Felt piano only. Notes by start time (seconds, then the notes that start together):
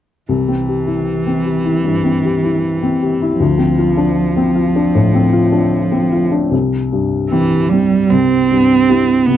0.29 C2
0.48 C4
0.68 G4
0.87 E4
1.26 C4
1.45 G4
1.65 E4
1.84 G2
2.04 C4
2.24 G4
2.44 E4
2.83 C4
3.02 G4
3.22 E4
3.40 D2
3.58 C4
3.78 F4
3.97 D4
4.36 C4
4.55 F4
4.75 D4
4.95 A2
5.14 C4
5.33 F4
5.52 D4
5.92 C4
6.12 F4
6.32 D4
6.51 C2
6.92 G2
7.31 C4 E4 G4
7.72 C4
8.12 C2
8.51 G2
8.89 C4 E4 G4
9.27 C3